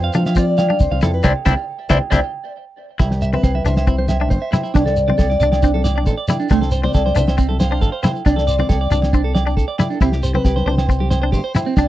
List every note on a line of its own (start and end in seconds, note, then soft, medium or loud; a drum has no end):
0.00 0.27 C5 medium
0.00 0.11 F5 medium
0.13 0.69 F3 medium
0.13 0.33 D4 medium
0.13 0.23 F5 medium
0.13 low conga medium
0.13 shekere medium
0.25 0.36 E5 medium
0.25 0.34 F5 medium
0.25 snare medium
0.25 low agogo medium
0.25 shekere soft
0.35 0.55 C4 medium
0.35 0.44 F4 medium
0.35 0.78 D5 medium
0.35 kick medium
0.35 shekere loud
0.57 0.66 F5 medium
0.57 snare medium
0.57 high conga medium
0.57 low agogo medium
0.57 shekere medium
0.69 0.88 D4 medium
0.69 0.77 F5 medium
0.69 high conga medium
0.80 0.90 C2 medium
0.80 1.13 C5 medium
0.80 kick medium
0.80 shekere medium
0.91 1.00 C2 medium
0.91 0.99 F5 medium
0.91 high conga medium
1.01 1.21 F2 medium
1.01 1.21 E4 medium
1.01 1.10 A4 medium
1.01 snare medium
1.01 low conga medium
1.01 low agogo medium
1.01 shekere medium
1.14 1.24 B4 medium
1.23 1.33 C2 medium
1.23 1.32 C4 loud
1.23 1.32 D4 loud
1.23 1.31 E4 medium
1.23 1.31 C5 loud
1.23 1.31 D5 medium
1.23 1.31 E5 medium
1.23 1.31 G5 medium
1.23 kick medium
1.23 snare medium
1.23 low conga loud
1.23 low agogo loud
1.23 shekere loud
1.45 1.54 C2 loud
1.45 1.53 C4 medium
1.45 1.53 D4 medium
1.45 1.53 E4 loud
1.45 1.53 C5 medium
1.45 1.53 D5 medium
1.45 1.53 E5 medium
1.45 1.53 G5 loud
1.45 kick medium
1.45 snare medium
1.45 low conga medium
1.45 low agogo medium
1.45 shekere medium
1.89 1.98 C2 medium
1.89 1.98 C4 medium
1.89 1.97 D4 medium
1.89 1.97 E4 loud
1.89 1.97 C5 medium
1.89 1.97 D5 loud
1.89 1.98 D5 medium
1.89 1.97 E5 medium
1.89 1.98 E5 medium
1.89 1.98 G5 loud
1.89 kick medium
1.89 snare medium
1.89 low conga loud
1.89 low agogo medium
1.89 shekere loud
2.11 2.20 C2 loud
2.11 2.19 C4 medium
2.11 2.19 D4 medium
2.11 2.19 E4 medium
2.11 2.19 C5 medium
2.11 2.19 D5 loud
2.11 2.19 D5 medium
2.11 2.19 E5 medium
2.11 2.19 G5 medium
2.11 kick medium
2.11 snare medium
2.11 low conga loud
2.11 low agogo loud
2.11 shekere loud
2.99 3.36 C2 medium
2.99 3.08 E4 medium
2.99 3.34 G4 medium
2.99 muted clean electric guitar stroke medium
2.99 kick medium
2.99 snare medium
2.99 low agogo medium
2.99 shekere medium
3.11 muted clean electric guitar stroke medium
3.11 snare medium
3.22 3.30 E5 medium
3.22 shekere medium
3.33 3.51 C4 medium
3.33 3.63 B4 medium
3.33 3.41 E5 medium
3.33 high conga medium
3.33 low conga medium
3.43 3.62 C2 medium
3.43 3.51 C5 medium
3.43 kick medium
3.43 snare medium
3.43 low agogo medium
3.43 shekere medium
3.55 3.62 E5 medium
3.55 high conga medium
3.64 4.37 C2 medium
3.64 3.84 D4 medium
3.64 4.27 C5 medium
3.64 3.74 E5 medium
3.64 low conga medium
3.64 shekere medium
3.77 3.85 E5 medium
3.77 snare medium
3.77 low agogo medium
3.77 shekere soft
3.87 4.05 C4 medium
3.87 3.95 E4 medium
3.87 kick medium
3.87 shekere medium
3.98 4.06 C5 medium
3.98 high conga medium
4.08 4.17 E5 medium
4.08 snare medium
4.08 high conga medium
4.08 low agogo medium
4.08 shekere medium
4.20 4.39 D4 medium
4.20 4.28 E5 medium
4.30 4.38 C5 medium
4.30 4.75 C5 medium
4.30 kick medium
4.30 shekere medium
4.42 4.49 E5 medium
4.52 4.71 E4 medium
4.52 4.60 E5 medium
4.52 snare medium
4.52 high conga medium
4.52 low conga medium
4.52 low agogo medium
4.52 shekere medium
4.63 4.71 E4 medium
4.63 shekere soft
4.74 5.11 C2 medium
4.74 4.82 D4 medium
4.74 4.94 D4 medium
4.74 5.16 D5 loud
4.74 kick medium
4.74 snare medium
4.74 low agogo medium
4.74 shekere medium
4.86 4.93 A4 medium
4.86 snare medium
4.96 shekere medium
5.08 5.27 C4 medium
5.08 5.15 D5 medium
5.08 high conga medium
5.08 low conga medium
5.18 5.37 C2 medium
5.18 5.26 A4 medium
5.18 6.03 D5 medium
5.18 kick medium
5.18 snare medium
5.18 low agogo medium
5.18 shekere medium
5.30 5.37 D5 medium
5.30 snare soft
5.30 high conga medium
5.40 6.13 C2 medium
5.40 5.60 D4 medium
5.40 5.48 D5 medium
5.40 low conga medium
5.40 shekere loud
5.52 5.59 D5 medium
5.52 snare medium
5.52 low agogo medium
5.52 shekere soft
5.62 5.81 C4 medium
5.62 5.70 D4 medium
5.62 kick medium
5.62 shekere medium
5.74 5.81 A4 medium
5.74 high conga medium
5.84 5.92 D5 medium
5.84 snare medium
5.84 high conga medium
5.84 low agogo medium
5.84 shekere medium
5.96 6.15 D4 medium
5.96 6.03 D5 medium
6.06 6.14 A4 medium
6.06 kick medium
6.06 shekere medium
6.18 6.25 D5 medium
6.28 6.47 E4 medium
6.28 6.36 D5 medium
6.28 snare medium
6.28 high conga medium
6.28 low conga medium
6.28 low agogo medium
6.28 shekere loud
6.40 6.47 D4 medium
6.40 shekere soft
6.49 6.87 C2 medium
6.49 6.58 A3 medium
6.49 6.69 D4 medium
6.49 6.83 C5 medium
6.49 kick medium
6.49 snare medium
6.49 low agogo medium
6.49 shekere medium
6.62 6.69 A4 medium
6.62 snare medium
6.71 6.80 C5 medium
6.71 shekere medium
6.83 7.02 C4 medium
6.83 6.91 C5 medium
6.83 7.14 D5 medium
6.83 high conga medium
6.83 low conga medium
6.94 7.12 C2 medium
6.94 7.02 A4 medium
6.94 kick medium
6.94 snare medium
6.94 low agogo medium
6.94 shekere medium
7.06 7.13 C5 medium
7.06 snare soft
7.06 high conga medium
7.15 7.89 C2 medium
7.15 7.34 D4 medium
7.15 7.24 C5 medium
7.15 7.60 E5 loud
7.15 low conga medium
7.15 shekere loud
7.27 7.35 C5 medium
7.27 snare medium
7.27 low agogo medium
7.27 shekere soft
7.38 7.56 C4 medium
7.38 7.46 C4 medium
7.38 kick medium
7.38 shekere medium
7.49 7.56 A4 medium
7.49 high conga medium
7.60 7.68 C5 medium
7.60 8.01 F5 loud
7.60 snare medium
7.60 high conga medium
7.60 low agogo medium
7.60 shekere medium
7.71 7.90 D4 medium
7.71 7.78 C5 medium
7.82 7.89 A4 medium
7.82 kick medium
7.82 snare soft
7.82 shekere medium
7.92 8.00 C5 medium
8.03 8.22 E4 medium
8.03 8.11 C5 medium
8.03 8.10 F5 medium
8.03 snare medium
8.03 high conga medium
8.03 low conga medium
8.03 low agogo medium
8.03 shekere medium
8.15 shekere soft
8.25 8.62 C2 medium
8.25 8.34 D4 medium
8.25 8.44 D4 medium
8.25 8.49 D5 medium
8.25 kick medium
8.25 snare medium
8.25 low agogo medium
8.25 shekere medium
8.36 8.44 A4 medium
8.36 snare medium
8.47 8.71 C5 medium
8.47 8.55 D5 medium
8.47 shekere medium
8.59 8.77 C4 medium
8.59 8.67 D5 medium
8.59 high conga medium
8.59 low conga medium
8.59 shekere soft
8.69 8.88 C2 medium
8.69 8.77 A4 medium
8.69 9.76 D5 medium
8.69 kick medium
8.69 snare medium
8.69 low agogo medium
8.69 shekere medium
8.81 8.88 D5 medium
8.90 9.64 C2 medium
8.90 9.10 D4 medium
8.90 9.00 D5 medium
8.90 low conga medium
8.90 shekere medium
9.02 muted clean electric guitar stroke medium
9.02 snare medium
9.02 low agogo medium
9.02 shekere soft
9.13 9.32 C4 medium
9.13 9.21 D4 medium
9.13 kick medium
9.13 shekere medium
9.24 9.32 A4 medium
9.35 9.43 D5 medium
9.35 snare medium
9.35 high conga medium
9.35 low agogo medium
9.46 9.65 D4 medium
9.46 9.54 D5 medium
9.46 shekere soft
9.57 9.65 A4 medium
9.57 kick medium
9.57 shekere medium
9.68 9.75 D5 medium
9.78 9.98 E4 medium
9.78 9.87 D5 medium
9.78 snare medium
9.78 high conga medium
9.78 low conga medium
9.78 low agogo medium
9.78 shekere medium
9.90 9.98 D4 medium
9.90 shekere soft
9.94 10.01 A4 medium
10.00 10.37 C2 medium
10.00 10.09 C4 medium
10.00 10.20 E4 medium
10.00 10.32 G4 medium
10.00 kick medium
10.00 snare medium
10.00 low agogo medium
10.00 shekere medium
10.12 10.20 G4 medium
10.12 snare medium
10.23 10.31 C5 medium
10.23 shekere medium
10.34 10.53 C4 medium
10.34 10.65 B4 medium
10.34 10.42 C5 medium
10.34 high conga medium
10.34 low conga medium
10.45 10.63 C2 medium
10.45 10.53 G4 medium
10.45 kick medium
10.45 snare medium
10.45 low agogo medium
10.45 shekere medium
10.56 10.64 C5 medium
10.56 snare soft
10.56 high conga medium
10.66 11.39 C2 medium
10.66 10.85 D4 medium
10.66 10.74 C5 medium
10.66 11.30 C5 medium
10.66 low conga medium
10.78 10.86 C5 medium
10.78 snare medium
10.78 low agogo medium
10.78 shekere soft
10.89 11.07 C4 medium
10.89 muted clean electric guitar stroke medium
10.89 kick medium
10.89 shekere medium
11.00 11.08 G4 medium
11.00 high conga medium
11.10 11.19 C5 medium
11.10 snare medium
11.10 high conga medium
11.10 low agogo medium
11.10 shekere medium
11.22 11.41 D4 medium
11.22 11.29 C5 medium
11.32 11.40 G4 medium
11.32 11.78 C5 medium
11.32 kick medium
11.32 shekere medium
11.44 11.51 C5 medium
11.55 11.74 E4 medium
11.55 snare medium
11.55 high conga medium
11.55 low conga medium
11.55 low agogo medium
11.55 shekere medium
11.66 11.74 C4 medium
11.66 shekere soft
11.77 11.88 C2 medium
11.77 11.85 D4 medium
11.77 11.88 D4 medium
11.77 11.88 D5 loud
11.77 kick medium
11.77 snare medium
11.77 low agogo medium
11.77 shekere medium